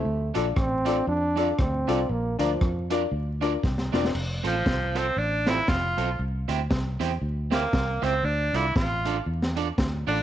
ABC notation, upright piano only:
X:1
M:4/4
L:1/16
Q:"Swing" 1/4=117
K:F
V:1 name="Upright piano"
z2 [DFAd] z [Ad]2 [DFAd] z3 [DFAd] z [Ad]2 [DFAd] z | z2 [DFBd] z3 [DFBd] z3 [DFBd] z3 [DFBd] z | z16 | z16 |
z16 |]